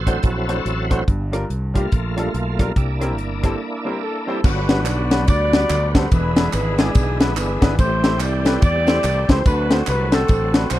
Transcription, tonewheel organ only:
0.00 0.19 F#4 medium
0.00 0.19 A4 medium
0.00 0.25 C5 medium
0.06 1.03 F#3 soft
0.06 0.22 C4 soft
0.06 1.04 E4 medium
0.22 1.04 C4 soft
0.22 1.04 F#4 soft
0.22 0.86 A4 medium
1.75 2.72 A3 soft
1.75 2.73 A#3 soft
1.75 2.73 F4 medium
2.76 4.40 A#3 medium
2.76 4.41 D4 soft
2.76 4.41 E4 soft
4.45 6.09 D3 medium
4.45 6.09 F#3 medium
4.45 6.09 G3 medium
4.45 6.09 B3 medium
4.45 4.51 F4 medium
4.50 6.11 F#4 medium
6.12 7.76 D3 medium
6.12 7.76 E3 medium
6.12 7.76 G#3 medium
6.12 7.76 B3 medium
6.12 7.76 E4 medium
7.79 9.43 E3 medium
7.79 9.43 G3 medium
7.79 9.43 A3 medium
7.79 9.43 C4 medium
7.79 9.43 G4 medium
9.46 10.79 D3 medium
9.46 10.79 F#3 medium
9.46 10.79 A3 medium
9.46 10.79 C4 medium
9.46 10.79 F#4 medium

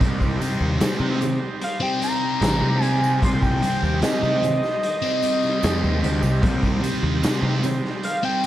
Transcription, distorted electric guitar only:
0.00 0.39 C3 medium
0.00 0.41 G3 loud
0.00 0.42 C4 loud
0.39 0.78 C3 medium
0.39 0.80 G3 medium
0.39 0.81 C4 medium
0.79 1.20 C3 medium
0.79 1.01 G3 medium
0.79 0.99 C4 loud
0.99 1.20 G3 medium
0.99 1.21 C4 medium
1.20 muted distorted electric guitar stroke soft
1.80 2.00 G3 medium
1.80 2.02 C4 medium
1.99 2.40 C3 medium
1.99 2.42 G3 medium
1.99 2.43 C4 medium
2.41 2.81 C3 loud
2.41 2.63 G3 loud
2.41 2.60 C4 loud
2.61 2.81 G3 medium
2.61 2.82 C4 medium
2.81 3.20 C3 medium
2.81 3.02 G3 medium
2.81 3.00 C4 medium
3.00 3.21 G3 medium
3.00 3.22 C4 medium
3.20 3.62 C3 medium
3.20 3.63 G3 loud
3.20 3.64 C4 loud
3.62 4.00 C3 medium
3.62 4.02 G3 medium
3.62 4.03 C4 medium
4.01 4.42 C3 medium
4.01 4.23 G3 loud
4.01 4.20 C4 medium
4.21 4.42 G3 medium
4.21 4.42 C4 medium
4.42 muted distorted electric guitar stroke soft
5.02 5.24 G3 medium
5.02 5.24 C4 medium
5.22 5.61 C3 medium
5.22 5.63 G3 medium
5.22 5.64 C4 medium
5.62 6.01 C3 medium
5.62 5.83 G3 medium
5.62 5.81 C4 medium
5.82 6.02 G3 medium
5.82 6.03 C4 medium
6.01 6.41 C3 medium
6.01 6.23 G3 medium
6.01 6.20 C4 medium
6.21 6.42 G3 medium
6.21 6.43 C4 medium
6.42 6.80 C3 loud
6.42 6.82 G3 loud
6.42 6.83 C4 medium
6.81 7.21 C3 medium
6.81 7.22 G3 medium
6.81 7.23 C4 medium
7.21 7.62 C3 medium
7.21 7.44 G3 loud
7.21 7.42 C4 loud
7.42 7.63 G3 medium
7.42 7.63 C4 medium
7.63 muted distorted electric guitar stroke soft
8.23 8.45 G3 medium
8.23 8.46 C4 medium

